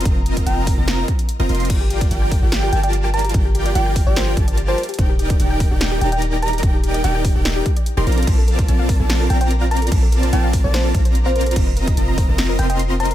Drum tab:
CC |--------------------------------|x-------------------------------|--------------------------------|--------------------------------|
HH |x---x-x-x---o---x---x-x-x---xxxx|x---x-x-x---o---x---x-x-x---xxxx|x---x-x-x---o---x---x-x-x---xxxx|x---x-x-x---o---x---x-x-x---xxxx|
SD |----------------o---------------|----------------o---------------|----------------o---------------|----------------o---------------|
BD |o-----o-----o-------o-----------|o-----o-----o-------------------|o-----------o-------o-----------|o-----o-----o-------------------|

CC |--------------------------------|x---------------x---------------|x---------------x---------------|x---------------x---------------|
HH |x---x-x-x---o---x---x-x-x---xxxx|x---x-x-x---o---x---x-x-x---xxxx|x---x-x-x---o---x---x-x-x---xxxx|x---x-x-x---o---x---x-x-x---xxx-|
SD |----------------o---------------|----------------o---------------|----------------o---------------|----------------o---------------|
BD |o-----------o-------o-----------|o-----o-----o-------------------|o-----------o-------o-----------|o-----o-----o-------------------|